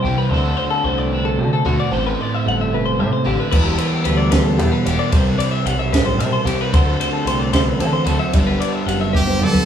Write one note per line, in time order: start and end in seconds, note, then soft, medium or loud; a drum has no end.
0.00 0.32 G3 medium
0.00 0.17 G4 medium
0.00 0.28 B4 medium
0.04 0.15 C2 loud
0.04 0.32 C3 medium
0.04 0.31 C3 medium
0.04 0.31 E3 medium
0.04 0.31 G3 medium
0.04 0.35 C4 medium
0.04 0.30 E4 medium
0.18 0.30 B4 medium
0.30 0.53 D2 loud
0.30 1.12 D3 medium
0.30 1.64 D3 loud
0.30 0.44 C5 medium
0.30 1.89 C5 medium
0.34 1.64 A3 medium
0.34 1.65 C4 loud
0.34 1.64 F#4 loud
0.44 0.57 A4 medium
0.57 0.70 C5 medium
0.71 0.84 A4 medium
0.84 1.40 C2 medium
0.84 1.89 A3 medium
0.84 0.98 C5 medium
0.98 1.12 D5 medium
1.12 1.39 D3 medium
1.12 1.25 B4 medium
1.25 1.39 A4 medium
1.38 1.65 C3 medium
1.38 1.49 D3 medium
1.38 1.52 F#4 medium
1.53 1.66 A4 medium
1.65 1.76 D2 loud
1.65 1.92 B2 medium
1.65 1.91 D3 medium
1.65 1.91 A3 medium
1.65 1.91 C4 medium
1.65 1.90 F#4 medium
1.65 1.79 F#4 medium
1.80 1.92 D5 medium
1.91 2.14 A1 loud
1.91 3.23 A2 medium
1.91 2.72 A2 medium
1.91 3.26 E3 medium
1.91 3.24 A3 medium
1.91 3.24 C4 loud
1.91 3.24 E4 loud
1.91 2.05 C5 medium
1.91 3.49 C5 medium
2.07 2.21 B4 medium
2.21 2.35 D5 medium
2.35 2.46 E5 medium
2.46 3.01 G1 medium
2.46 3.49 A3 medium
2.46 2.60 F#5 medium
2.61 2.73 E5 medium
2.72 2.98 B2 medium
2.72 2.86 B4 medium
2.85 3.00 C5 medium
2.98 3.10 A2 medium
2.98 3.25 C3 medium
2.98 3.12 E5 medium
3.13 3.25 C5 medium
3.25 3.37 A1 loud
3.25 3.51 A2 medium
3.25 3.50 D3 medium
3.25 3.52 E3 medium
3.25 3.50 A3 medium
3.25 3.50 C4 medium
3.25 3.54 E4 medium
3.25 3.39 G4 medium
3.40 3.50 B4 medium
3.51 3.74 E1 loud
3.51 5.08 E3 medium
3.51 4.84 E3 medium
3.51 4.84 G3 medium
3.51 4.85 B3 loud
3.51 4.84 E4 loud
3.51 3.65 B4 medium
3.51 5.09 B4 medium
3.51 kick loud
3.51 crash medium
3.65 3.78 G4 medium
3.78 3.91 B4 medium
3.78 ride medium
3.91 4.04 G4 medium
4.04 4.59 D2 medium
4.04 5.66 G3 medium
4.04 4.18 B4 medium
4.04 ride medium
4.17 4.31 D5 medium
4.31 4.44 B4 medium
4.31 kick medium
4.31 snare loud
4.31 ride medium
4.44 4.57 A4 medium
4.57 4.70 E2 medium
4.57 5.10 B2 medium
4.57 4.72 G4 medium
4.57 ride medium
4.72 4.85 B4 medium
4.85 4.96 E1 loud
4.85 5.11 E3 medium
4.85 5.11 G3 medium
4.85 5.11 B3 medium
4.85 5.10 E4 medium
4.85 4.98 G4 medium
4.85 5.10 G4 medium
4.85 ride medium
4.99 5.12 D5 medium
5.11 5.34 C2 loud
5.11 6.44 C3 medium
5.11 5.93 C3 medium
5.11 6.44 E3 loud
5.11 6.45 G3 loud
5.11 6.45 C4 medium
5.11 6.44 E4 loud
5.11 6.71 B4 medium
5.11 5.25 C5 medium
5.11 kick loud
5.11 ride medium
5.25 5.38 B4 medium
5.39 5.51 D5 medium
5.39 ride medium
5.51 5.66 E5 medium
5.65 6.20 B1 medium
5.65 6.74 G3 medium
5.65 5.79 F#5 medium
5.65 ride medium
5.79 5.92 E5 medium
5.93 6.20 A2 medium
5.93 6.06 B4 medium
5.93 kick medium
5.93 snare loud
5.93 ride loud
6.06 6.19 C5 medium
6.18 6.47 B2 medium
6.18 6.30 C3 medium
6.18 6.32 E5 medium
6.18 ride medium
6.33 6.46 C5 medium
6.45 6.56 C2 loud
6.45 6.72 C3 medium
6.45 6.71 E3 medium
6.45 6.71 G3 medium
6.45 6.71 C4 medium
6.45 6.71 E4 medium
6.45 6.59 G4 medium
6.45 ride medium
6.49 6.74 C3 medium
6.61 6.73 B4 medium
6.72 6.95 D2 loud
6.72 8.04 D3 medium
6.72 7.52 D3 medium
6.72 8.05 A3 medium
6.72 8.05 C4 medium
6.72 8.04 F#4 loud
6.72 6.86 C5 medium
6.72 8.31 C5 medium
6.72 kick loud
6.72 ride medium
6.86 7.00 A4 medium
7.00 7.13 C5 medium
7.00 ride medium
7.13 7.26 A4 medium
7.25 7.81 C2 medium
7.25 8.30 A3 medium
7.25 7.40 C5 medium
7.25 ride medium
7.40 7.53 D5 medium
7.53 7.80 D3 medium
7.53 7.66 C5 medium
7.53 kick medium
7.53 snare loud
7.53 ride medium
7.66 7.79 B4 medium
7.79 7.91 D3 medium
7.79 8.07 E3 medium
7.79 7.93 A4 medium
7.79 ride medium
7.93 8.06 C5 medium
8.05 8.17 D2 loud
8.05 8.32 D3 medium
8.05 8.34 F#3 medium
8.05 8.32 A3 medium
8.05 8.32 C4 medium
8.05 8.35 F#4 medium
8.05 8.19 A4 medium
8.05 ride medium
8.20 8.33 E5 medium
8.33 8.56 G1 loud
8.33 9.65 G2 medium
8.33 9.65 D3 medium
8.33 9.65 G3 medium
8.33 9.65 B3 loud
8.33 9.65 D4 loud
8.33 9.65 G4 loud
8.33 9.65 B4 medium
8.33 8.47 D5 medium
8.33 kick loud
8.33 ride medium
8.47 8.60 B4 medium
8.61 8.73 D5 medium
8.61 ride medium
8.73 8.87 E5 medium
8.86 9.42 F#1 medium
8.86 9.65 G3 medium
8.86 9.00 F#5 medium
8.86 ride medium
9.01 9.14 E5 medium
9.13 9.45 G4 loud
9.13 9.27 B4 medium
9.13 kick medium
9.13 high tom medium
9.27 9.40 C5 medium
9.27 high tom medium
9.40 9.52 G2 medium
9.40 9.65 D3 medium
9.40 9.53 D5 medium
9.40 mid tom medium
9.44 9.65 A4 loud
9.54 9.65 B4 medium
9.54 kick medium